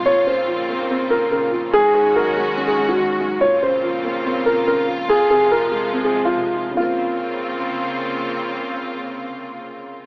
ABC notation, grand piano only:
X:1
M:4/4
L:1/16
Q:1/4=143
K:Bbm
V:1 name="Grand piano"
d2 c8 B2 B2 z2 | A2 A2 B4- B A2 G4- G | d2 c8 B2 B2 z2 | A2 A2 B4- B A2 F4- F |
F12 z4 | z16 |]